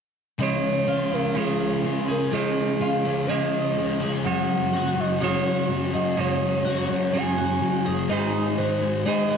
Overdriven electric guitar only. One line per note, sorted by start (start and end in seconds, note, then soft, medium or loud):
0.39 1.34 C#3 medium
0.39 1.35 F3 medium
0.39 1.36 G#3 medium
0.39 1.36 C#4 medium
0.39 1.37 F4 medium
0.39 1.38 C#5 medium
1.34 2.30 C#3 medium
1.34 2.31 F3 medium
1.34 2.33 G#3 medium
1.34 2.33 C#4 medium
1.34 2.32 F4 medium
1.34 2.35 C#5 medium
2.32 3.27 C#3 medium
2.32 3.27 F3 medium
2.32 3.29 G#3 medium
2.32 3.29 C#4 medium
2.32 3.28 F4 medium
2.32 3.31 C#5 medium
3.28 4.23 C#3 medium
3.28 4.24 F3 medium
3.28 4.25 G#3 medium
3.28 4.26 C#4 medium
3.28 4.25 F4 medium
3.28 4.27 C#5 medium
4.24 5.20 F#3 medium
4.24 5.21 G#3 medium
4.24 5.22 C#4 medium
4.24 5.23 F#4 loud
4.24 5.24 C#5 medium
5.21 6.16 F#3 medium
5.21 6.18 G#3 medium
5.21 6.17 C#4 medium
5.21 6.17 F#4 medium
5.21 6.18 C#5 medium
6.17 7.12 F#3 medium
6.17 7.14 G#3 medium
6.17 7.13 C#4 medium
6.17 7.13 F#4 medium
6.17 7.14 C#5 medium
7.13 8.08 F#3 medium
7.13 8.09 G#3 medium
7.13 8.09 C#4 medium
7.13 8.09 F#4 medium
7.13 8.10 C#5 medium
8.09 9.05 G#3 medium
8.09 9.06 D#4 medium
8.09 9.07 G#4 medium
8.09 9.08 C5 medium
9.06 9.37 G#3 medium
9.06 9.37 D#4 medium
9.06 9.37 G#4 medium
9.06 9.37 C5 medium